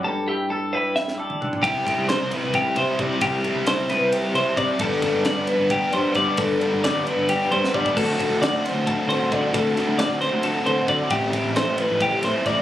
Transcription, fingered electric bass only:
X:1
M:7/8
L:1/16
Q:1/4=133
K:G
V:1 name="Fingered electric bass" clef=bass
z12 z2 | C,,2 z C,,2 C,, z C,,2 z C, z C, z | C,,2 z C,,2 C,, z C,,2 z C, z C, z | G,,,2 z G,,,2 G,,, z G,,,2 z G,, z G,, z |
G,,,2 z G,,,2 G,,, z G,,,2 z G,, z G,, z | D,,2 z D,,2 D,, z D,,2 z D, z D, z | D,,2 z D,,2 D,, z D,,2 z D, z D, z | A,,,2 z A,,,2 A,,, z A,,,2 z A,, z A,,, z |]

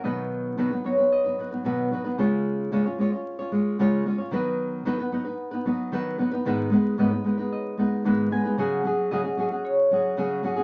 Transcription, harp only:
X:1
M:4/4
L:1/8
Q:1/4=112
K:Cblyd
V:1 name="Harp"
^d2 z _d ^d3 z | z8 | z8 | z2 e2 e3 a |
g2 e2 d2 z2 |]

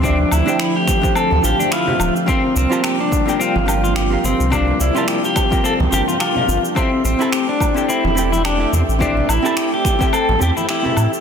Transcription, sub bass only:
X:1
M:4/4
L:1/16
Q:"Swing 16ths" 1/4=107
K:Cmix
V:1 name="Sub bass" clef=bass
D,, z D,, z6 D,, A,,, z3 D,,, z | z2 C,, z6 G,,,4 z G,,, C,,- | C,, z C,, z6 C,, G,,, z3 G,,, z | z2 A,,, z6 E,,,4 z E,, A,,,- |
A,,, z A,,, z6 A,,, E,, z3 A,, z |]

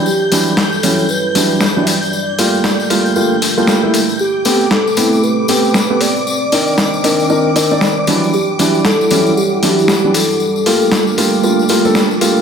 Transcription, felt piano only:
X:1
M:4/4
L:1/16
Q:"Swing 16ths" 1/4=116
K:Ephr
V:1 name="Felt piano"
z2 [E,^F,G,D] z3 [E,F,G,^C] z3 [E,F,G,D]2 z [E,F,G,D] z2 | z2 [G,A,_B,F]4 [G,A,B,F]2 [G,A,B,F] z2 [G,A,B,F]2 [G,A,B,E] z2 | z2 [A,B,CG] z3 [A,B,CE] z3 [A,B,CG]2 z [A,B,CG] z2 | z2 [CD_E_B]4 [CDEB]2 [CDEB] z [CDEB] [CDEd] z2 [=E,^F,G,D]2 |
z2 [E,^F,G,D] z3 [E,F,G,^C] z3 [E,F,G,D]2 z [E,F,G,D] z2 | z2 [G,A,_B,F]4 [G,A,B,F]2 [G,A,B,F] z [G,A,B,F] [G,A,B,A] z2 [G,A,B,F]2 |]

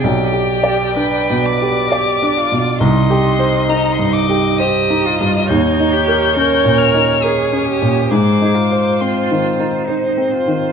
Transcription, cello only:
X:1
M:3/4
L:1/8
Q:1/4=68
K:Cm
V:1 name="Cello"
G2 =B2 G F | E2 E2 G F | E G B2 A G | A F3 E F |]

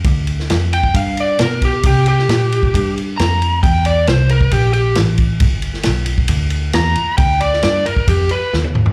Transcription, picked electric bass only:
X:1
M:4/4
L:1/8
Q:1/4=134
K:C
V:1 name="Picked electric bass" clef=bass
D,,2 F,,2 G,,2 B,,2 | C,2 _B,,2 G,,2 F,,2 | E,,2 C,,2 _B,,,2 A,,,2 | G,,,2 B,,,2 D,,2 E,, z |
D,,2 G,, z F,, z _E,,2 |]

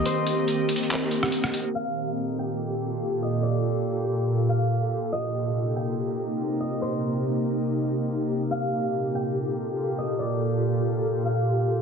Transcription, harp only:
X:1
M:4/4
L:1/8
Q:1/4=142
K:Gm
V:1 name="Harp"
c6 z2 | f3 g4 e | d4- d f z2 | e3 g4 e |
c6 z2 | f3 g4 e | d4- d f z2 |]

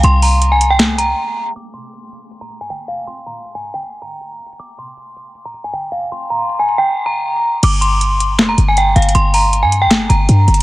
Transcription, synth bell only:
X:1
M:4/4
L:1/16
Q:1/4=158
K:Gphr
V:1 name="Synth bell"
c'2 b3 a2 g z2 b6 | d'2 c'6- c' b2 a g2 f2 | c'2 b3 a2 g z2 b6 | d'2 c'6- c' b2 a g2 f2 |
c'2 b3 a2 g z2 b6 | d'2 c'6- c' b2 a g2 f2 | c'2 b3 a2 g z2 b6 |]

